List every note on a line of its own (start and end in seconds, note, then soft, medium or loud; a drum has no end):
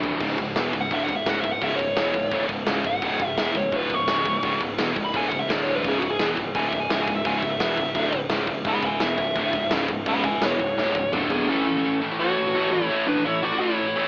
0.00 0.18 D1 medium
0.00 0.20 D2 loud
0.00 0.21 A2 loud
0.00 0.21 D3 loud
0.00 floor tom medium
0.20 0.37 C#1 medium
0.20 0.37 C#2 medium
0.20 0.38 G#2 loud
0.20 0.38 C#3 loud
0.20 kick loud
0.20 crash loud
0.20 crash medium
0.38 0.55 C#1 medium
0.38 0.53 C#2 medium
0.38 0.53 G#2 medium
0.38 kick medium
0.38 crash medium
0.56 0.73 E1 medium
0.56 0.73 E2 loud
0.56 0.74 B2 medium
0.56 0.74 E3 loud
0.56 snare loud
0.56 crash medium
0.73 0.90 C#1 medium
0.73 0.88 C#2 medium
0.73 0.88 G#2 medium
0.73 kick medium
0.73 crash medium
0.81 0.93 F#5 medium
0.91 1.07 D1 medium
0.91 1.08 D2 medium
0.91 1.09 A2 medium
0.91 1.09 D3 medium
0.91 1.04 E5 medium
0.91 kick loud
0.91 crash medium
1.04 1.15 F#5 medium
1.09 1.25 C#1 medium
1.09 1.23 C#2 medium
1.09 1.23 G#2 medium
1.09 kick medium
1.09 crash medium
1.16 1.29 E5 medium
1.26 1.43 C#1 medium
1.26 1.43 C#2 loud
1.26 1.44 G#2 loud
1.26 1.44 C#3 loud
1.26 1.39 F#5 medium
1.26 snare loud
1.26 crash medium
1.41 1.60 C#1 medium
1.41 1.58 C#2 medium
1.41 1.59 G#2 medium
1.41 1.51 E5 medium
1.41 kick medium
1.41 crash medium
1.53 1.63 F#5 medium
1.62 1.78 C#1 medium
1.62 1.78 C#2 loud
1.62 1.78 G#2 loud
1.62 1.79 C#3 loud
1.62 1.75 E5 medium
1.62 kick loud
1.62 crash medium
1.76 1.96 C#1 medium
1.76 1.93 C#2 medium
1.76 1.94 G#2 medium
1.76 2.43 C#5 loud
1.76 kick medium
1.76 crash medium
1.96 2.14 E1 medium
1.96 2.13 E2 medium
1.96 2.14 B2 loud
1.96 2.14 E3 loud
1.96 snare loud
1.96 crash medium
2.14 2.31 C#1 medium
2.14 2.28 C#2 medium
2.14 2.29 G#2 medium
2.14 kick medium
2.14 crash medium
2.31 2.48 D1 medium
2.31 2.49 D2 medium
2.31 2.50 A2 loud
2.31 2.50 D3 loud
2.31 kick loud
2.31 crash medium
2.49 2.66 C#1 medium
2.49 2.64 C#2 medium
2.49 2.64 G#2 medium
2.49 kick medium
2.49 crash medium
2.67 2.84 C#1 medium
2.67 2.83 C#2 loud
2.67 2.83 G#2 loud
2.67 2.85 C#3 medium
2.67 snare loud
2.67 crash medium
2.84 3.01 C#1 medium
2.84 2.99 C#2 medium
2.84 2.99 G#2 medium
2.84 3.37 F#5 loud
2.84 kick medium
2.84 crash medium
3.02 3.19 C#1 medium
3.02 3.19 C#2 loud
3.02 3.20 G#2 loud
3.02 3.20 C#3 loud
3.02 kick loud
3.02 crash medium
3.20 3.36 C#1 medium
3.20 3.34 C#2 medium
3.20 3.35 G#2 medium
3.20 kick medium
3.20 crash medium
3.37 3.54 E1 medium
3.37 3.55 E2 loud
3.37 3.55 B2 medium
3.37 3.56 E3 loud
3.37 3.56 E5 medium
3.37 snare loud
3.37 crash medium
3.55 3.71 C#1 medium
3.55 3.70 C#2 medium
3.55 3.70 G#2 medium
3.55 3.76 C#5 medium
3.55 kick medium
3.55 crash medium
3.72 3.89 D1 medium
3.72 3.90 D2 loud
3.72 3.90 A2 loud
3.72 3.91 D3 loud
3.72 kick loud
3.72 crash medium
3.76 3.94 B4 loud
3.89 4.06 C#1 medium
3.89 4.05 C#2 medium
3.89 4.05 G#2 medium
3.89 kick medium
3.89 crash medium
3.94 4.61 C#5 loud
4.07 4.24 C#1 medium
4.07 4.25 C#2 medium
4.07 4.26 G#2 loud
4.07 4.26 C#3 loud
4.07 snare loud
4.07 crash medium
4.25 4.42 C#1 medium
4.25 4.41 C#2 medium
4.25 4.41 G#2 medium
4.25 kick medium
4.25 crash medium
4.43 4.60 C#1 medium
4.43 4.60 C#2 loud
4.43 4.61 G#2 loud
4.43 4.61 C#3 loud
4.43 kick loud
4.43 crash medium
4.60 4.77 C#1 medium
4.60 4.76 C#2 medium
4.60 4.76 G#2 medium
4.60 kick medium
4.60 crash medium
4.78 4.95 E1 medium
4.78 4.96 E2 medium
4.78 4.96 B2 medium
4.78 4.97 E3 loud
4.78 snare loud
4.78 crash medium
4.96 5.13 C#1 medium
4.96 5.11 C#2 medium
4.96 5.11 G#2 medium
4.96 kick medium
4.96 crash medium
5.05 5.16 B5 loud
5.14 5.30 D1 loud
5.14 5.31 D2 medium
5.14 5.32 A2 loud
5.14 5.32 D3 loud
5.14 5.28 G#5 loud
5.14 kick loud
5.14 crash medium
5.28 5.48 C#1 medium
5.28 5.38 F#5 loud
5.28 kick medium
5.28 crash medium
5.33 5.50 C#2 medium
5.33 5.47 G#2 medium
5.40 5.50 E5 medium
5.50 5.83 D1 medium
5.50 5.84 D2 loud
5.50 5.84 A2 loud
5.50 5.85 D3 loud
5.50 5.63 D5 medium
5.50 snare loud
5.50 crash medium
5.63 5.73 C#5 medium
5.67 crash medium
5.75 5.86 B4 medium
5.84 6.01 C#1 medium
5.84 6.02 C#2 loud
5.84 6.02 G#2 loud
5.84 6.03 C#3 loud
5.84 kick loud
5.84 crash medium
5.88 5.98 G#4 medium
5.99 6.19 C#1 medium
5.99 6.17 C#2 medium
5.99 6.17 G#2 medium
5.99 6.10 F#4 loud
5.99 kick medium
5.99 crash medium
6.10 6.26 G#4 loud
6.19 6.36 E1 medium
6.19 6.37 E2 loud
6.19 6.38 B2 loud
6.19 6.38 E3 loud
6.19 snare loud
6.19 crash medium
6.37 6.54 C#1 medium
6.37 6.52 C#2 medium
6.37 6.52 G#2 medium
6.37 kick medium
6.37 crash medium
6.54 6.71 D1 loud
6.54 6.72 D2 loud
6.54 6.72 A2 loud
6.54 6.73 D3 loud
6.54 6.67 G#5 loud
6.54 kick loud
6.54 crash medium
6.68 6.79 E5 medium
6.73 6.89 C#1 medium
6.73 6.87 C#2 medium
6.73 6.87 G#2 medium
6.73 kick medium
6.73 crash medium
6.80 6.91 G#5 loud
6.89 7.06 C#1 medium
6.89 7.07 C#2 loud
6.89 7.07 G#2 loud
6.89 7.08 C#3 loud
6.89 7.02 E5 medium
6.89 snare loud
6.89 crash medium
7.02 7.13 G#5 medium
7.07 7.24 C#1 medium
7.07 7.22 C#2 medium
7.07 7.22 G#2 medium
7.07 kick medium
7.07 crash medium
7.14 7.25 E5 loud
7.25 7.42 C#1 medium
7.25 7.42 C#2 loud
7.25 7.42 G#2 loud
7.25 7.43 C#3 loud
7.25 7.37 G#5 loud
7.25 kick loud
7.25 crash medium
7.38 7.49 E5 medium
7.42 7.59 C#1 medium
7.42 7.57 C#2 medium
7.42 7.57 G#2 medium
7.42 kick medium
7.42 crash medium
7.51 8.18 E5 loud
7.60 7.77 E1 medium
7.60 7.78 E2 medium
7.60 7.78 B2 loud
7.60 7.78 E3 loud
7.60 snare loud
7.60 crash medium
7.77 7.94 C#1 medium
7.77 7.93 C#2 medium
7.77 7.93 G#2 medium
7.77 kick medium
7.77 crash medium
7.94 8.12 D1 medium
7.94 8.13 D2 medium
7.94 8.13 A2 loud
7.94 8.13 D3 loud
7.94 kick loud
7.94 crash medium
8.12 8.29 C#1 medium
8.12 8.28 C#2 medium
8.12 8.28 G#2 medium
8.12 kick medium
8.12 crash medium
8.29 8.47 C#1 loud
8.29 8.48 C#2 medium
8.29 8.48 G#2 loud
8.29 8.49 C#3 loud
8.29 snare loud
8.29 crash medium
8.47 8.64 C#1 medium
8.47 8.63 C#2 medium
8.47 8.63 G#2 medium
8.47 kick loud
8.47 crash medium
8.64 8.82 C#1 medium
8.64 8.84 C#2 loud
8.64 8.84 G#2 loud
8.64 8.84 C#3 loud
8.64 8.84 F#5 loud
8.64 8.84 B5 loud
8.64 kick loud
8.64 crash medium
8.83 9.00 C#1 medium
8.83 8.99 C#2 medium
8.83 8.99 G#2 medium
8.83 9.01 E5 medium
8.83 9.02 G#5 loud
8.83 kick loud
8.83 crash medium
9.00 9.17 E1 medium
9.00 9.19 E2 medium
9.00 9.19 B2 loud
9.00 9.19 E3 loud
9.00 9.70 E5 loud
9.00 snare loud
9.00 crash medium
9.18 9.35 C#1 medium
9.18 9.33 C#2 medium
9.18 9.34 G#2 medium
9.18 kick loud
9.18 crash medium
9.35 9.52 D1 loud
9.35 9.54 D2 loud
9.35 9.54 A2 loud
9.35 9.54 D3 loud
9.35 kick loud
9.35 crash medium
9.53 9.70 C#1 medium
9.53 9.69 C#2 medium
9.53 9.69 G#2 medium
9.53 kick medium
9.53 crash medium
9.71 9.88 C#1 medium
9.71 9.89 C#2 loud
9.71 9.89 G#2 loud
9.71 9.90 C#3 loud
9.71 snare loud
9.71 crash medium
9.88 10.05 C#1 medium
9.88 10.04 C#2 medium
9.88 10.04 G#2 medium
9.88 kick medium
9.88 crash medium
10.06 10.23 C#1 medium
10.06 10.24 C#2 loud
10.06 10.24 G#2 loud
10.06 10.25 C#3 loud
10.06 10.23 F#5 loud
10.06 10.24 B5 loud
10.06 kick loud
10.06 crash medium
10.24 10.40 C#1 medium
10.24 10.39 C#2 medium
10.24 10.39 G#2 medium
10.24 10.41 E5 medium
10.24 10.42 G#5 loud
10.24 kick medium
10.24 crash medium
10.41 10.58 E1 medium
10.41 10.60 E2 loud
10.41 10.60 B2 loud
10.41 10.60 E3 loud
10.41 11.12 C#5 medium
10.41 snare loud
10.41 crash medium
10.60 10.76 C#1 medium
10.60 10.74 C#2 medium
10.60 10.75 G#2 medium
10.60 kick medium
10.60 crash medium
10.77 10.94 D1 loud
10.77 10.95 D2 loud
10.77 10.95 A2 loud
10.77 10.96 D3 loud
10.77 snare medium
10.95 11.12 C#1 medium
10.95 11.10 C#2 medium
10.95 11.10 G#2 medium
10.95 kick medium
11.12 11.45 D1 medium
11.12 11.48 D2 loud
11.12 11.47 A2 loud
11.12 11.48 D3 loud
11.12 11.31 D4 medium
11.12 11.30 A4 medium
11.12 mid tom loud
11.30 11.47 B3 medium
11.30 11.47 G#4 medium
11.30 floor tom medium
11.48 11.65 A2 medium
11.48 11.65 E3 loud
11.48 11.66 A3 loud
11.48 11.97 C#4 loud
11.48 11.98 A4 medium
11.67 11.75 A2 medium
11.67 11.75 E3 medium
11.76 11.83 A2 medium
11.76 11.83 E3 medium
11.84 12.00 A2 medium
11.84 12.00 E3 medium
12.00 12.10 A2 medium
12.00 12.10 E3 medium
12.00 12.56 A3 loud
12.11 12.18 A2 medium
12.11 12.19 E3 medium
12.19 12.36 A2 loud
12.19 12.36 E3 medium
12.19 12.37 A3 loud
12.19 12.71 F#4 loud
12.19 12.69 C#5 medium
12.38 12.45 A2 medium
12.38 12.45 E3 medium
12.46 12.54 A2 medium
12.46 12.55 E3 medium
12.55 12.71 A2 medium
12.55 12.71 E3 loud
12.55 12.72 A3 loud
12.71 12.81 A2 medium
12.71 12.80 E3 medium
12.71 13.04 E4 loud
12.71 13.05 C#5 medium
12.82 12.89 A2 medium
12.82 12.89 E3 medium
12.90 13.06 A2 loud
12.90 13.06 E3 loud
12.90 13.07 A3 loud
13.07 13.16 A2 medium
13.07 13.15 E3 loud
13.07 13.25 D4 loud
13.07 13.25 B4 medium
13.16 13.25 A2 medium
13.16 13.24 E3 medium
13.25 13.41 A2 medium
13.25 13.41 E3 medium
13.25 13.43 E4 medium
13.25 13.44 C#5 medium
13.43 13.51 A2 medium
13.43 13.51 E3 medium
13.43 13.97 A3 medium
13.43 13.59 F#4 loud
13.43 13.61 D5 medium
13.52 13.59 A2 medium
13.52 13.59 E3 medium
13.60 13.77 A2 medium
13.60 13.77 E3 medium
13.60 13.77 A3 loud
13.60 14.08 E4 loud
13.60 14.08 C#5 medium
13.79 13.86 A2 medium
13.79 13.86 E3 medium
13.87 13.95 A2 medium
13.87 13.95 E3 medium
13.96 14.08 A2 medium
13.96 14.08 E3 loud
13.96 14.08 A3 loud